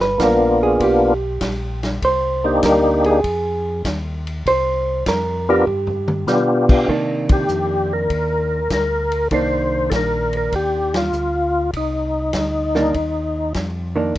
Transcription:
0.00 0.17 G1 medium
0.00 0.19 B4 medium
0.18 0.78 A#1 medium
0.18 1.13 A#3 medium
0.18 1.14 B3 medium
0.18 1.14 D4 medium
0.18 1.14 F4 medium
0.18 kick soft
0.18 snare medium
0.18 hi-hat pedal medium
0.18 ride medium
0.23 0.62 A#4 medium
0.63 0.81 G#4 medium
0.80 1.39 B1 medium
0.80 1.80 G4 medium
0.80 kick soft
0.80 ride medium
1.41 2.00 A#1 medium
1.41 kick soft
1.41 snare medium
1.41 hi-hat pedal medium
1.41 ride medium
1.83 snare medium
1.83 ride soft
2.02 2.61 C2 medium
2.02 2.60 C5 medium
2.02 kick soft
2.02 ride medium
2.44 3.20 A#3 medium
2.44 3.20 D4 medium
2.44 3.20 D#4 medium
2.44 3.21 G4 medium
2.63 3.22 D2 medium
2.63 3.04 A#4 medium
2.63 kick soft
2.63 snare medium
2.63 hi-hat pedal medium
2.63 ride medium
3.04 3.81 G#4 medium
3.04 ride soft
3.24 3.82 F2 medium
3.24 kick soft
3.24 ride medium
3.85 4.43 D#2 medium
3.85 kick soft
3.85 snare medium
3.85 hi-hat pedal medium
3.85 ride medium
4.27 ride soft
4.46 5.04 C2 medium
4.46 5.03 C5 loud
4.46 kick soft
4.46 ride medium
5.06 5.65 F2 medium
5.06 5.47 A#4 medium
5.06 kick soft
5.06 snare medium
5.06 hi-hat pedal medium
5.06 ride medium
5.49 5.65 B3 medium
5.49 5.65 D4 medium
5.49 5.65 F4 medium
5.49 6.24 G4 medium
5.49 5.66 A#4 medium
5.67 6.25 G2 medium
5.67 floor tom soft
5.87 floor tom medium
6.08 mid tom medium
6.27 6.86 B2 loud
6.27 6.88 B3 medium
6.27 6.88 D4 medium
6.27 6.88 F4 medium
6.27 6.89 G4 medium
6.27 snare soft
6.27 hi-hat pedal medium
6.69 kick medium
6.69 crash medium
6.88 7.47 C3 medium
6.88 8.59 D#3 medium
6.88 8.59 A#3 medium
6.88 8.60 D4 medium
6.88 kick soft
7.29 7.93 G4 medium
7.29 kick medium
7.29 ride medium
7.49 8.07 F2 medium
7.49 hi-hat pedal soft
7.93 8.72 A#4 medium
8.10 8.68 D#2 medium
8.10 kick soft
8.10 ride medium
8.70 9.29 D2 medium
8.70 9.28 A#4 medium
8.70 kick soft
8.70 snare medium
8.70 hi-hat pedal medium
8.70 ride medium
9.12 ride soft
9.31 9.89 C2 medium
9.31 11.01 D#3 medium
9.31 11.02 A#3 medium
9.31 11.02 D4 medium
9.31 9.90 C5 loud
9.31 kick soft
9.31 ride medium
9.90 10.50 A#1 medium
9.90 9.93 A4 medium
9.90 kick soft
9.90 snare medium
9.90 hi-hat pedal soft
9.90 ride medium
9.96 10.36 A#4 medium
10.33 ride soft
10.37 10.54 A#4 medium
10.52 11.11 D#2 medium
10.52 10.96 G4 medium
10.52 kick soft
10.52 ride medium
10.94 11.71 F4 medium
10.94 snare medium
10.94 ride medium
11.12 11.71 D2 medium
11.12 hi-hat pedal medium
11.73 12.32 C2 medium
11.73 13.53 D#4 medium
11.73 kick soft
11.73 ride medium
12.33 12.92 D2 medium
12.33 kick soft
12.33 snare medium
12.33 hi-hat pedal medium
12.33 ride medium
12.75 12.92 D#3 medium
12.75 12.93 A#3 medium
12.75 12.93 D4 medium
12.75 snare soft
12.94 13.53 D#2 medium
12.94 kick soft
12.94 ride medium
13.54 14.14 F2 medium
13.54 kick soft
13.54 snare medium
13.54 hi-hat pedal medium
13.54 ride medium
13.96 14.13 D#3 medium
13.96 14.14 A#3 medium
13.96 14.14 D4 medium

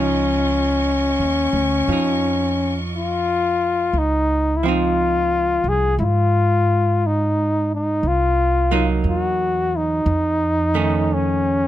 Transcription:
0.00 1.15 C#2 medium
0.00 1.88 F3 soft
0.00 2.78 C#4 medium
0.00 1.91 D#4 medium
0.00 3.89 F4 medium
0.00 3.89 D#5 medium
0.00 3.89 C#6 medium
1.19 1.51 D#2 medium
1.53 1.85 D2 medium
1.88 3.89 F2 medium
1.88 3.94 F3 soft
1.92 3.95 D#4 soft
2.95 3.99 F4 medium
3.93 5.60 C#2 medium
3.98 4.58 D#4 medium
4.56 4.69 E4 medium
4.63 8.03 F3 soft
4.63 8.04 C4 medium
4.63 5.70 F4 medium
4.68 8.05 D#4 medium
5.64 5.95 C2 medium
5.69 5.96 G#4 medium
5.98 7.98 G#2 medium
5.98 6.03 E4 medium
5.98 7.08 F4 loud
7.06 7.72 D#4 medium
7.74 8.09 D#4 medium
8.03 9.00 C2 medium
8.07 8.89 F4 loud
8.71 10.06 F#3 medium
8.71 10.06 A#3 medium
8.71 10.07 D#4 medium
9.04 10.01 E2 medium
9.09 9.79 F#4 medium
9.77 11.15 D#4 medium
10.06 11.68 F2 medium
10.74 11.68 D#3 soft
10.74 11.68 A3 soft
10.74 11.68 C#4 medium
11.13 11.68 C#4 medium

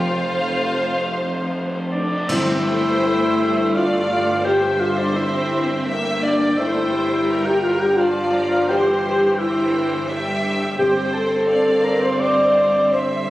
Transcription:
0.00 2.04 F1 medium
0.00 2.04 F2 medium
0.00 1.52 F4 medium
0.00 1.87 C5 medium
0.00 1.53 F5 medium
1.91 2.26 D4 medium
1.91 2.30 D5 medium
2.28 6.54 G1 medium
2.28 3.34 G2 loud
2.28 6.55 G2 medium
2.28 2.62 C4 medium
2.28 3.74 E4 loud
2.28 3.70 C5 medium
2.28 3.75 E5 medium
2.28 3.70 G5 medium
2.28 concert bass drum medium
2.28 crash medium
2.65 4.41 A3 medium
3.74 4.46 F4 medium
3.74 4.45 D5 medium
3.74 4.44 F5 medium
3.74 4.45 F5 medium
4.44 5.15 G3 medium
4.44 4.80 G4 loud
4.44 5.87 C5 medium
4.44 5.14 E5 medium
4.44 4.81 G5 medium
4.80 4.98 F4 medium
4.80 4.98 F5 medium
4.97 5.16 D4 medium
4.97 5.17 D5 medium
5.14 5.87 C4 medium
5.14 5.86 E4 medium
5.14 5.85 E5 medium
5.14 5.87 E5 medium
5.86 6.58 A#3 medium
5.86 6.22 E5 medium
5.86 7.97 G5 medium
6.21 6.55 D4 medium
6.21 6.58 D5 medium
6.21 6.59 D5 medium
6.57 10.74 G1 medium
6.57 10.74 G2 medium
6.57 6.92 A3 medium
6.57 7.45 E4 medium
6.57 7.29 C5 medium
6.57 7.47 E5 medium
6.93 7.98 G3 medium
7.28 7.97 A#4 medium
7.45 7.63 G4 loud
7.45 7.65 G5 medium
7.61 7.79 F4 medium
7.61 7.82 F5 medium
7.80 7.98 G4 medium
7.80 8.00 G5 medium
7.96 8.67 F3 medium
7.96 8.68 F4 loud
7.96 8.69 D5 medium
7.96 8.68 F5 medium
7.96 8.33 A5 medium
8.32 8.68 A#5 medium
8.68 9.03 E3 medium
8.68 9.38 G4 loud
8.68 9.37 C5 medium
8.68 9.40 G5 loud
8.68 9.37 C6 medium
9.04 10.07 E3 medium
9.38 10.07 E4 medium
9.38 10.07 C5 medium
9.38 10.08 E5 medium
9.38 10.07 G5 medium
10.08 10.78 G3 medium
10.08 10.78 E5 medium
10.08 10.76 G5 medium
10.77 13.30 G1 medium
10.77 13.30 G2 medium
10.77 11.80 G2 medium
10.77 13.30 C4 medium
10.77 11.10 G4 loud
10.77 11.44 C5 medium
10.77 11.43 G5 medium
10.77 11.14 G5 medium
11.12 11.83 A4 medium
11.12 11.86 A5 medium
11.48 12.20 D5 medium
11.48 12.19 F5 medium
11.83 12.01 A#4 medium
11.83 12.02 A#5 medium
12.01 12.19 C5 medium
12.01 12.21 C6 medium
12.18 12.91 C5 medium
12.18 12.90 D5 loud
12.18 12.90 F5 medium
12.18 12.91 D6 loud
12.92 13.30 C5 medium
12.92 13.30 E5 medium
12.92 13.30 C6 medium

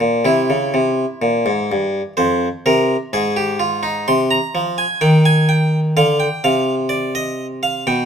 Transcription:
0.00 0.24 A#2 medium
0.00 0.21 F4 medium
0.25 0.48 C3 medium
0.25 2.13 E4 medium
0.50 0.73 C#3 medium
0.74 1.04 C3 medium
1.22 1.45 A#2 medium
1.46 1.69 G#2 medium
1.72 2.00 G2 medium
2.17 2.47 F2 medium
2.17 2.46 C5 medium
2.66 2.95 C3 medium
2.66 2.95 A#4 medium
3.13 4.05 G#2 medium
3.13 3.35 G#4 medium
3.36 3.59 G4 medium
3.60 3.82 F4 medium
3.83 4.06 D#4 medium
4.08 4.37 C3 medium
4.08 4.30 C6 loud
4.31 4.60 A#5 loud
4.55 4.84 F3 medium
4.78 5.01 G#5 loud
5.01 5.93 D#3 medium
5.01 5.25 G5 loud
5.25 5.48 G#5 loud
5.49 5.78 G5 loud
5.97 6.26 D3 medium
5.97 6.20 F5 loud
6.20 6.43 G5 medium
6.44 7.83 C3 medium
6.44 6.73 F5 loud
6.89 7.13 D5 loud
7.15 7.45 D#5 loud
7.63 7.86 F5 loud
7.87 8.05 B2 medium
7.87 8.05 G5 loud

